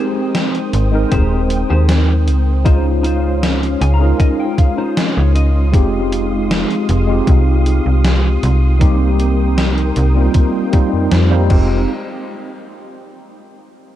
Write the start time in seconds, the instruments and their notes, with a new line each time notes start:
Already playing: tine electric piano G#3 C4 D#4 A#4 G5, clean electric guitar G4 G#4 C5, string machine C5 G5 D#6
0.35 snare, closed hi-hat
0.55 closed hi-hat
0.73 fm bass G#1, muted clean electric guitar stroke, closed hi-hat
0.92 tine electric piano G#3 C4 D#4 A#4 G5
1.11 fm bass D#1, clean electric guitar G4 G#4 C5, kick, closed hi-hat
1.50 closed hi-hat
1.70 fm bass D#2, clean electric guitar G4 G#4 C5
1.89 snare, closed hi-hat
2.08 muted clean electric guitar stroke
2.27 fm bass C#2, muted clean electric guitar stroke, closed hi-hat
2.64 tine electric piano G#3 C#4 D#4 F4 C5, string machine C#4 F5 C6 D#6, clean electric guitar D#4 F4 C5, kick, closed hi-hat
3.03 clean electric guitar D#4 F4 C5, closed hi-hat
3.43 snare, closed hi-hat
3.63 closed hi-hat
3.81 fm bass C#2, clean electric guitar G#5, muted clean electric guitar stroke, closed hi-hat
3.94 clean electric guitar A#5
3.99 tine electric piano G#3 C#4 D#4 F4 A#4
4.19 clean electric guitar D#4 F4 D#5 G#5, kick, closed hi-hat
4.40 clean electric guitar G5
4.58 clean electric guitar F5, kick, closed hi-hat
4.77 clean electric guitar D#4 F4 C5
4.97 clean electric guitar D#5, snare, closed hi-hat
5.16 fm bass C#2, clean electric guitar C#5, muted clean electric guitar stroke
5.35 clean electric guitar D#5, muted clean electric guitar stroke, closed hi-hat
5.72 fm bass F1, tine electric piano G#3 C4 D#4 F4 G4, string machine G#3 F5, kick, closed hi-hat
6.12 closed hi-hat
6.51 snare, closed hi-hat
6.71 closed hi-hat
6.89 fm bass F1, closed hi-hat
7.07 tine electric piano G#3 C4 D#4 F4 G4
7.27 fm bass C2, kick, closed hi-hat
7.66 closed hi-hat
7.86 fm bass C2
8.05 snare, closed hi-hat
8.43 fm bass C2, closed hi-hat
8.78 tine electric piano G3 A#3 C4 D#4 G4, string machine A#4 G5, kick, closed hi-hat
9.20 closed hi-hat
9.58 snare, closed hi-hat
9.78 closed hi-hat
9.96 fm bass C2, closed hi-hat
10.15 tine electric piano G3 A#3 C4 D#4 F4
10.34 kick, closed hi-hat
10.72 tine electric piano G3 A#3 C4 D#4 C5, kick, closed hi-hat
10.93 fm bass F2
11.12 fm bass F2, snare, closed hi-hat
11.30 tine electric piano G3 A#3 C4 D#4 C5
11.48 fm bass F1, tine electric piano G#3 C4 D#4 F4, string machine G#3 C4 D#5 F5, kick, crash
11.52 tine electric piano G4